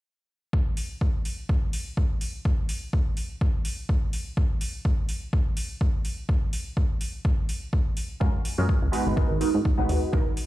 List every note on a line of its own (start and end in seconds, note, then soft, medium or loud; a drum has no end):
0.53 kick loud
0.77 open hi-hat medium
1.01 kick medium
1.25 open hi-hat medium
1.49 kick loud
1.73 open hi-hat loud
1.97 kick medium
2.21 open hi-hat medium
2.45 kick loud
2.69 open hi-hat loud
2.93 kick medium
3.17 open hi-hat medium
3.41 kick loud
3.65 open hi-hat loud
3.89 kick loud
4.13 open hi-hat medium
4.37 kick loud
4.61 open hi-hat loud
4.85 kick loud
5.09 open hi-hat medium
5.33 kick loud
5.57 open hi-hat loud
5.81 kick loud
6.05 open hi-hat medium
6.29 kick loud
6.53 open hi-hat loud
6.77 kick medium
7.01 open hi-hat medium
7.25 kick loud
7.49 open hi-hat loud
7.73 kick loud
7.97 open hi-hat medium
8.20 8.29 F#2 loud
8.20 8.29 G#3 medium
8.20 8.29 C#4 medium
8.20 8.29 F4 medium
8.20 8.29 F#4 medium
8.20 8.29 A#4 medium
8.20 kick loud
8.45 open hi-hat loud
8.58 8.72 F#2 medium
8.58 8.65 G#3 medium
8.58 8.65 C#4 medium
8.58 8.65 F4 medium
8.58 8.65 F#4 medium
8.58 8.65 A#4 medium
8.69 kick medium
8.82 8.89 C#2 medium
8.92 9.04 G#1 soft
8.92 9.14 G#3 medium
8.92 9.14 B3 medium
8.92 9.14 D#4 medium
8.92 9.14 F#4 medium
8.92 9.14 B4 loud
8.92 open hi-hat medium
9.07 9.13 G#1 medium
9.16 9.38 G#3 medium
9.16 9.38 B3 medium
9.16 9.38 D#4 medium
9.16 9.38 F#4 medium
9.16 9.39 A#4 medium
9.16 kick loud
9.31 9.44 G#1 medium
9.40 9.49 G#3 medium
9.40 9.49 B3 medium
9.40 9.49 D#4 medium
9.40 9.49 F#4 medium
9.40 9.49 A#4 medium
9.40 open hi-hat loud
9.54 9.61 G#2 medium
9.65 kick loud
9.78 9.85 B1 loud
9.78 10.10 G#3 medium
9.78 10.10 B3 medium
9.78 10.10 D#4 medium
9.78 10.10 F#4 medium
9.78 10.11 B4 loud
9.89 9.98 D#2 medium
9.89 open hi-hat medium
10.12 10.22 B1 loud
10.12 10.21 F#3 medium
10.12 10.21 B3 medium
10.12 10.21 C#4 medium
10.12 10.21 D#4 medium
10.12 10.21 A#4 loud
10.12 kick loud
10.37 open hi-hat medium